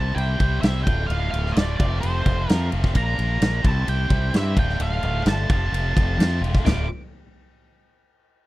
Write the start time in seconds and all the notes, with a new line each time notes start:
Already playing: C2 C3 G3 C4 E4 G4 C5 A5
0.15 C2 C3 G3 C4 E4 G4 C5 G5, ride
0.39 C2 C4 E4 G4 C5, kick, ride
0.61 C2 C4 E4 G4 C5 E5, snare, ride
0.83 D1 D3 A3 F4 G5, kick, ride
0.88 D2 A2
1.07 D1 D2 A2 D3 A3 F4 F5, ride
1.31 D1 D3 A3 F4 F5, ride
1.46 snare
1.52 D5
1.56 D1, snare, ride
1.77 F1 C3 F3 A3 C4 F4 D5, kick, ride
1.81 F2
2.00 F1 F2 C3 F3 A3 C4 F4 C5, ride
2.25 F1 F3 A3 C4 F4, kick, ride
2.47 F2 F3 A3 C4 F4 A#4, snare, ride
2.70 F1 F3 A3 C4 F4, ride
2.84 kick, snare
2.93 A#1 A#2 F3 A#3 D4 F4 A#4 A#5, kick, ride
3.18 A#1 A#3 D4 F4 A#4, ride
3.42 A#1, snare, ride
3.63 C2 C3 G3 C4 E4 G4 C5 A5, kick, ride
3.86 C2 C3 G3 C4 E4 G4 C5 G5, ride
4.09 C2 C4 E4 G4 C5, kick, ride
4.32 G2 C4 E4 G4 C5, snare, ride
4.37 E5
4.56 D1 D2 A2 D3 A3 F4 G5, kick, ride
4.69 snare
4.79 D1 D2 A2 D3 A3 F4 F5, ride
5.03 D1 D3 A3 F4, ride
5.26 G1 A5, snare, ride
5.49 F1 F2 C3 F3 A3 C4 F4 A5, kick, ride
5.72 F1 F2 C3 F3 A3 C4 F4, ride
5.96 F1 F3 A3 C4 F4, kick, ride
6.18 F2 F3 A3 C4 F4, snare, ride
6.41 E1 F3 A3 C4 F4, ride
6.55 kick, snare
6.65 D1 D2 A2 D3 A3 F4 D6, snare, floor tom, crash